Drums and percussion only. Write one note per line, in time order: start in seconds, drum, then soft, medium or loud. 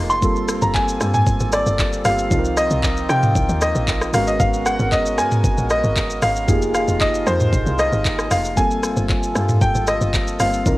0.10 shaker medium
0.22 kick loud
0.22 shaker medium
0.36 shaker medium
0.49 cross-stick loud
0.49 shaker loud
0.62 shaker medium
0.75 kick loud
0.75 clap medium
0.75 shaker medium
0.88 shaker medium
1.01 cross-stick medium
1.01 shaker medium
1.14 mid tom medium
1.14 shaker medium
1.27 kick loud
1.27 shaker medium
1.40 shaker medium
1.52 cross-stick loud
1.52 shaker medium
1.66 shaker medium
1.79 kick loud
1.79 clap loud
1.79 shaker medium
1.93 shaker medium
2.05 cross-stick loud
2.05 open hi-hat medium
2.05 shaker loud
2.19 shaker medium
2.31 kick loud
2.31 shaker medium
2.45 shaker medium
2.57 cross-stick medium
2.57 shaker loud
2.71 shaker medium
2.83 kick loud
2.83 clap medium
2.83 shaker medium
2.97 shaker medium
3.09 cross-stick medium
3.09 shaker medium
3.23 mid tom loud
3.23 shaker medium
3.35 kick loud
3.35 shaker medium
3.49 shaker medium
3.61 cross-stick loud
3.61 shaker medium
3.75 shaker medium
3.88 kick loud
3.88 clap loud
3.88 shaker medium
4.01 cross-stick loud
4.01 shaker medium
4.14 cross-stick loud
4.14 open hi-hat medium
4.14 shaker loud
4.27 shaker medium
4.40 kick loud
4.40 shaker medium
4.54 shaker medium
4.66 cross-stick medium
4.66 shaker loud
4.79 shaker medium
4.92 kick loud
4.92 clap medium
4.92 shaker medium
5.06 shaker medium
5.18 cross-stick medium
5.18 shaker medium
5.32 mid tom loud
5.32 shaker medium
5.44 kick loud
5.44 shaker medium
5.58 shaker medium
5.70 cross-stick loud
5.70 shaker medium
5.84 shaker medium
5.96 kick loud
5.96 clap loud
5.96 shaker medium
6.10 shaker medium
6.22 cross-stick loud
6.22 open hi-hat medium
6.22 shaker loud
6.36 shaker medium
6.49 kick loud
6.49 shaker medium
6.62 shaker medium
6.75 cross-stick medium
6.75 shaker loud
6.88 shaker medium
7.01 kick loud
7.01 clap loud
7.01 shaker medium
7.14 shaker medium
7.27 cross-stick medium
7.27 shaker medium
7.40 mid tom loud
7.40 shaker medium
7.53 kick loud
7.53 shaker medium
7.66 shaker medium
7.79 cross-stick loud
7.79 shaker medium
7.92 shaker medium
8.05 kick loud
8.05 clap loud
8.05 shaker medium
8.19 cross-stick loud
8.19 shaker medium
8.31 cross-stick medium
8.31 open hi-hat medium
8.31 shaker loud
8.45 shaker medium
8.57 kick loud
8.57 shaker medium
8.71 shaker medium
8.83 cross-stick medium
8.83 shaker medium
8.97 shaker medium
9.09 kick loud
9.09 clap medium
9.09 shaker medium
9.23 shaker medium
9.36 cross-stick medium
9.36 shaker medium
9.49 mid tom loud
9.49 shaker medium
9.61 kick loud
9.61 shaker medium
9.75 shaker medium
9.87 cross-stick loud
9.87 shaker medium
10.01 shaker medium
10.14 kick loud
10.14 clap loud
10.14 shaker medium
10.28 shaker medium
10.40 cross-stick medium
10.40 open hi-hat medium
10.40 shaker loud
10.53 shaker medium
10.66 kick loud
10.66 shaker medium